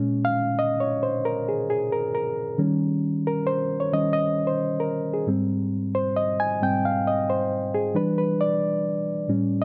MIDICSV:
0, 0, Header, 1, 2, 480
1, 0, Start_track
1, 0, Tempo, 669419
1, 1863, Time_signature, 4, 2, 24, 8
1, 6915, End_track
2, 0, Start_track
2, 0, Title_t, "Reed electric piano"
2, 0, Program_c, 0, 4
2, 0, Note_on_c, 0, 46, 57
2, 0, Note_on_c, 0, 56, 56
2, 0, Note_on_c, 0, 61, 64
2, 68, Control_c, 0, 64, 127
2, 177, Note_on_c, 0, 77, 104
2, 421, Note_on_c, 0, 75, 99
2, 427, Note_off_c, 0, 77, 0
2, 576, Note_on_c, 0, 73, 86
2, 587, Note_off_c, 0, 75, 0
2, 738, Note_on_c, 0, 72, 80
2, 745, Note_off_c, 0, 73, 0
2, 811, Note_off_c, 0, 72, 0
2, 898, Note_on_c, 0, 70, 87
2, 1065, Note_off_c, 0, 70, 0
2, 1065, Note_on_c, 0, 68, 70
2, 1210, Note_off_c, 0, 68, 0
2, 1219, Note_on_c, 0, 68, 79
2, 1370, Note_off_c, 0, 68, 0
2, 1379, Note_on_c, 0, 70, 77
2, 1452, Note_off_c, 0, 70, 0
2, 1539, Note_on_c, 0, 70, 66
2, 1764, Note_off_c, 0, 70, 0
2, 1831, Note_off_c, 0, 46, 0
2, 1833, Note_off_c, 0, 56, 0
2, 1835, Note_off_c, 0, 61, 0
2, 1851, Note_on_c, 0, 51, 59
2, 1856, Note_on_c, 0, 55, 52
2, 1859, Note_on_c, 0, 61, 58
2, 1871, Control_c, 0, 64, 0
2, 1981, Control_c, 0, 64, 127
2, 2191, Note_off_c, 0, 51, 0
2, 2193, Note_off_c, 0, 55, 0
2, 2195, Note_off_c, 0, 61, 0
2, 2346, Note_on_c, 0, 70, 80
2, 2485, Note_on_c, 0, 72, 90
2, 2488, Note_off_c, 0, 70, 0
2, 2725, Note_on_c, 0, 73, 82
2, 2731, Note_off_c, 0, 72, 0
2, 2815, Note_on_c, 0, 51, 45
2, 2818, Note_off_c, 0, 73, 0
2, 2818, Note_on_c, 0, 55, 39
2, 2821, Note_on_c, 0, 75, 94
2, 2823, Note_on_c, 0, 61, 50
2, 2954, Note_off_c, 0, 75, 0
2, 2962, Note_on_c, 0, 75, 87
2, 3035, Note_off_c, 0, 51, 0
2, 3036, Note_off_c, 0, 55, 0
2, 3039, Note_off_c, 0, 61, 0
2, 3185, Note_off_c, 0, 75, 0
2, 3206, Note_on_c, 0, 72, 83
2, 3442, Note_on_c, 0, 70, 76
2, 3451, Note_off_c, 0, 72, 0
2, 3682, Note_on_c, 0, 68, 67
2, 3689, Note_off_c, 0, 70, 0
2, 3777, Note_on_c, 0, 44, 60
2, 3781, Note_on_c, 0, 55, 50
2, 3788, Note_on_c, 0, 60, 64
2, 3790, Note_off_c, 0, 68, 0
2, 3794, Control_c, 0, 64, 0
2, 3917, Control_c, 0, 64, 127
2, 4266, Note_on_c, 0, 72, 88
2, 4421, Note_on_c, 0, 75, 89
2, 4429, Note_off_c, 0, 72, 0
2, 4471, Note_off_c, 0, 44, 0
2, 4474, Note_off_c, 0, 55, 0
2, 4477, Note_off_c, 0, 60, 0
2, 4571, Note_off_c, 0, 75, 0
2, 4588, Note_on_c, 0, 80, 102
2, 4734, Note_off_c, 0, 80, 0
2, 4745, Note_on_c, 0, 44, 49
2, 4747, Note_on_c, 0, 55, 44
2, 4750, Note_on_c, 0, 60, 56
2, 4755, Note_on_c, 0, 79, 97
2, 4914, Note_off_c, 0, 79, 0
2, 4914, Note_on_c, 0, 77, 84
2, 4960, Note_off_c, 0, 44, 0
2, 4961, Note_off_c, 0, 55, 0
2, 4963, Note_off_c, 0, 60, 0
2, 5058, Note_off_c, 0, 77, 0
2, 5073, Note_on_c, 0, 75, 86
2, 5232, Note_on_c, 0, 72, 85
2, 5233, Note_off_c, 0, 75, 0
2, 5553, Note_on_c, 0, 68, 88
2, 5557, Note_off_c, 0, 72, 0
2, 5623, Note_off_c, 0, 68, 0
2, 5698, Note_on_c, 0, 52, 58
2, 5701, Note_on_c, 0, 55, 53
2, 5705, Note_on_c, 0, 62, 67
2, 5710, Note_on_c, 0, 71, 92
2, 5712, Control_c, 0, 64, 0
2, 5832, Control_c, 0, 64, 127
2, 5856, Note_off_c, 0, 71, 0
2, 5865, Note_on_c, 0, 71, 79
2, 6028, Note_on_c, 0, 74, 84
2, 6029, Note_off_c, 0, 71, 0
2, 6034, Note_off_c, 0, 52, 0
2, 6036, Note_off_c, 0, 55, 0
2, 6038, Note_off_c, 0, 62, 0
2, 6477, Note_off_c, 0, 74, 0
2, 6657, Note_on_c, 0, 45, 55
2, 6662, Note_on_c, 0, 55, 50
2, 6665, Note_on_c, 0, 61, 57
2, 6671, Control_c, 0, 64, 0
2, 6795, Control_c, 0, 64, 127
2, 6915, Note_off_c, 0, 45, 0
2, 6915, Note_off_c, 0, 55, 0
2, 6915, Note_off_c, 0, 61, 0
2, 6915, End_track
0, 0, End_of_file